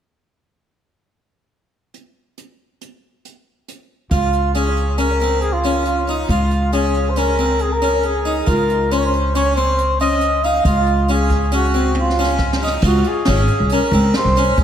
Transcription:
1.94 closed hi-hat
2.38 closed hi-hat
2.81 closed hi-hat
3.25 closed hi-hat
3.68 closed hi-hat
4.11 upright bass C#2, harpsichord F4, trumpet F4, kick, closed hi-hat
4.33 closed hi-hat
4.54 harpsichord C#4, trumpet G#4, closed hi-hat
4.76 closed hi-hat
4.98 harpsichord C#4, trumpet A#4, closed hi-hat
5.19 harpsichord C4, closed hi-hat
5.41 trumpet G#4, closed hi-hat
5.53 trumpet F4
5.63 harpsichord C#4, closed hi-hat
5.85 trumpet F4, closed hi-hat
6.07 harpsichord D#4, closed hi-hat
6.29 upright bass C#2, trumpet F4, harpsichord F4, kick, closed hi-hat
6.51 closed hi-hat
6.72 harpsichord C#4, trumpet G#4, closed hi-hat
6.94 closed hi-hat
7.10 trumpet C5
7.16 harpsichord C#4, trumpet A#4, closed hi-hat
7.37 harpsichord C4, closed hi-hat
7.59 trumpet G#4, closed hi-hat
7.72 trumpet A#4
7.81 harpsichord C#4, closed hi-hat
8.03 trumpet G#4, closed hi-hat
8.25 harpsichord D#4, closed hi-hat
8.46 upright bass C#2, harpsichord F4, trumpet A#4, kick, closed hi-hat
8.69 closed hi-hat
8.91 harpsichord C#4, trumpet C5, closed hi-hat
8.98 trumpet C#5
9.05 trumpet C5
9.13 closed hi-hat
9.35 harpsichord C#4, trumpet C#5, closed hi-hat
9.56 harpsichord C4, trumpet C5, closed hi-hat
9.78 closed hi-hat
9.99 harpsichord C#4, trumpet D#5, closed hi-hat
10.21 closed hi-hat
10.44 harpsichord D#4, trumpet F5, closed hi-hat
10.65 upright bass C#2, harpsichord F4, trumpet F4, kick, closed hi-hat
10.86 closed hi-hat
11.08 harpsichord C#4, trumpet G#4, closed hi-hat
11.30 kick, closed hi-hat
11.51 harpsichord C#4, trumpet F#4, closed hi-hat
11.73 harpsichord C4, closed hi-hat
11.95 high tom
12.00 trumpet F4
12.10 snare
12.19 harpsichord C#4
12.24 snare
12.38 kick, snare
12.53 snare
12.63 harpsichord D#4
12.67 snare
12.82 upright bass C#2, harpsichord F4, kick, crash
12.87 trumpet F#4
13.04 closed hi-hat
13.08 trumpet G#4
13.25 upright bass G#1, harpsichord C#4, snare, closed hi-hat
13.48 closed hi-hat
13.60 upright bass C2
13.69 harpsichord C#4, trumpet A#4, closed hi-hat
13.91 upright bass C#2, harpsichord C4, closed hi-hat
14.14 trumpet C5, snare, closed hi-hat
14.24 upright bass C2
14.35 harpsichord C#4, snare, closed hi-hat
14.57 upright bass C#2, trumpet G#4, kick, closed hi-hat

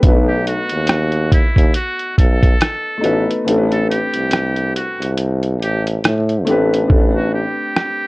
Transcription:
0.02 tuba B1, felt piano A3 B3 D4, kick, closed hi-hat
0.08 felt piano F#4 B4
0.12 felt piano D#4
0.28 muted trumpet G4
0.47 muted trumpet F#4, closed hi-hat
0.69 tuba D#2, closed hi-hat
0.87 cross-stick, closed hi-hat
1.12 closed hi-hat
1.32 muted trumpet E4, kick, closed hi-hat
1.56 tuba D#2, kick, closed hi-hat
1.74 muted trumpet F#4, closed hi-hat
1.99 closed hi-hat
2.18 tuba B1, muted trumpet A4, kick, closed hi-hat
2.43 kick, closed hi-hat
2.61 cross-stick, closed hi-hat
2.98 felt piano A3 B3 D#4
3.03 tuba A1, felt piano F#4 B4, closed hi-hat
3.30 closed hi-hat
3.44 tuba A1, felt piano A3 C4 D4, closed hi-hat
3.49 felt piano G4 A4
3.57 felt piano B4
3.72 muted trumpet A4, closed hi-hat
3.90 muted trumpet G4, closed hi-hat
4.14 tuba C2, closed hi-hat
4.31 cross-stick, closed hi-hat
4.56 closed hi-hat
4.76 muted trumpet F#4, closed hi-hat
5.00 tuba C2, closed hi-hat
5.18 closed hi-hat
5.43 closed hi-hat
5.62 tuba A1, muted trumpet G4, closed hi-hat
5.87 closed hi-hat
6.04 tuba A2, cross-stick, closed hi-hat
6.29 closed hi-hat
6.45 tuba A1, felt piano A3 C4 D4, closed hi-hat
6.49 felt piano G4 B4
6.74 closed hi-hat
6.84 felt piano A3 C4 D4
6.89 tuba A1, felt piano G4 A4, kick
6.97 felt piano B4
7.15 muted trumpet F#4
7.34 muted trumpet G4
7.76 cross-stick

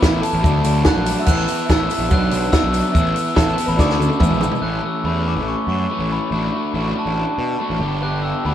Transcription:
Already playing: synth bell B4, glockenspiel B5
0.01 picked electric bass A1, overdriven electric guitar E3 B3 E4, kick, snare, shaker
0.21 overdriven electric guitar B3 E4, synth bell A4, glockenspiel A5, open hi-hat, shaker
0.33 picked electric bass A1
0.43 picked electric bass D2, overdriven electric guitar F#3 A3 D4, kick, shaker
0.64 picked electric bass D2, open hi-hat, shaker
0.75 shaker
0.83 overdriven electric guitar F#3 A3, synth bell F#5, glockenspiel F#6, kick, snare, shaker
0.87 overdriven electric guitar D4
0.95 picked electric bass A#1
1.06 overdriven electric guitar A3 D4, open hi-hat, shaker
1.17 synth bell E5, shaker
1.22 glockenspiel E6
1.26 picked electric bass A1, overdriven electric guitar E3 B3 E4, synth bell F#5, glockenspiel F#6, kick, crash, shaker
1.47 open hi-hat, shaker
1.58 shaker
1.66 picked electric bass A1, overdriven electric guitar E3 B3, synth bell E5, kick, shaker
1.70 overdriven electric guitar E4, glockenspiel E6, snare
1.89 overdriven electric guitar B3 E4, open hi-hat, shaker
1.99 picked electric bass A#1
2.09 picked electric bass B1, overdriven electric guitar F#3 B3 D4, synth bell F#5, glockenspiel F#6, kick, shaker
2.31 picked electric bass B1, open hi-hat, shaker
2.44 shaker
2.51 overdriven electric guitar F#3 B3 D4, synth bell E5, glockenspiel E6, kick, snare, shaker
2.64 picked electric bass B1
2.72 overdriven electric guitar B3 D4, open hi-hat, shaker
2.85 shaker
2.93 picked electric bass A1, overdriven electric guitar E3 B3 E4, synth bell E5, glockenspiel E6, kick, shaker
3.06 shaker
3.16 open hi-hat, shaker
3.35 picked electric bass A1, overdriven electric guitar E3 B3 E4, synth bell A4, glockenspiel A5, kick, snare, shaker
3.49 shaker
3.56 overdriven electric guitar B3 E4, open hi-hat, shaker
3.66 picked electric bass A1, synth bell B4, glockenspiel B5
3.70 shaker
3.76 picked electric bass D2, overdriven electric guitar F#3 A3 D4, synth bell D5, glockenspiel D6, kick, snare, shaker
3.80 overdriven electric guitar A4
3.90 snare
3.99 picked electric bass D2, high tom, shaker
4.09 high tom, shaker
4.19 picked electric bass E2, overdriven electric guitar B3 E4 G#4, synth bell E5, glockenspiel E6, kick, mid tom, shaker
4.30 picked electric bass A#1, mid tom
4.34 shaker
4.39 overdriven electric guitar E4 G#4, floor tom, shaker
4.51 floor tom, shaker
4.61 picked electric bass A1, overdriven electric guitar E3 A3 C#4, glockenspiel F#6
4.82 overdriven electric guitar A3 C#4, glockenspiel E6
5.04 picked electric bass E2, overdriven electric guitar E3 A3 C#4, glockenspiel B5
5.26 overdriven electric guitar A3 C#4, glockenspiel D6
5.36 picked electric bass A1
5.48 glockenspiel C#6
5.67 picked electric bass F#2, glockenspiel C#6
5.89 overdriven electric guitar E3 A3 C#4, glockenspiel C#6
5.99 picked electric bass A1
6.10 overdriven electric guitar A3 C#4, glockenspiel B5
6.31 picked electric bass A1, overdriven electric guitar A3 D4 F#4, glockenspiel B5
6.53 overdriven electric guitar D4 F#4
6.74 picked electric bass A1, overdriven electric guitar A3 D4 F#4
6.96 overdriven electric guitar D4 F#4, glockenspiel A5
7.06 picked electric bass A1
7.38 picked electric bass B2
7.60 overdriven electric guitar A3 D4 F#4
7.70 picked electric bass A1
7.79 picked electric bass G1, overdriven electric guitar B3 D4 G4
8.01 overdriven electric guitar B3 D4 G4, glockenspiel F#6
8.22 overdriven electric guitar D4 G4, glockenspiel E6
8.45 picked electric bass D2, overdriven electric guitar B3 D4 G4, glockenspiel B5

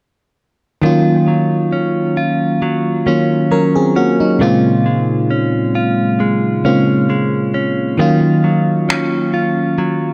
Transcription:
0.82 fm electric piano D#3 F#3 A#3 C#4 F4, clean electric guitar D#3 F4
1.28 clean electric guitar F#3
1.73 clean electric guitar C#4
2.17 clean electric guitar F4
2.62 clean electric guitar F#3
3.06 fm electric piano D#3 F#3 A#3 C#4 F4, clean electric guitar C#4
3.51 clean electric guitar F#3, fm electric piano C#4 A#4
3.75 fm electric piano C4 G#4
3.96 fm electric piano A#3 F#4, clean electric guitar C#4
4.20 fm electric piano F#3 D#4
4.39 clean electric guitar A#2 F4, fm electric piano C#3 G#3 A#3 C4 F4
4.86 clean electric guitar G#3
5.31 clean electric guitar C#4
5.75 clean electric guitar F4
6.20 clean electric guitar G#3
6.64 fm electric piano C#3 G#3 A#3 C4 F4, clean electric guitar C#4
7.10 clean electric guitar G#3
7.54 clean electric guitar C#4
7.98 fm electric piano D#3 F#3 A#3 C#4 F4, clean electric guitar D#3 F4
8.44 clean electric guitar F#3
8.89 clean electric guitar C#4, finger snap
9.34 clean electric guitar F4
9.78 clean electric guitar F#3

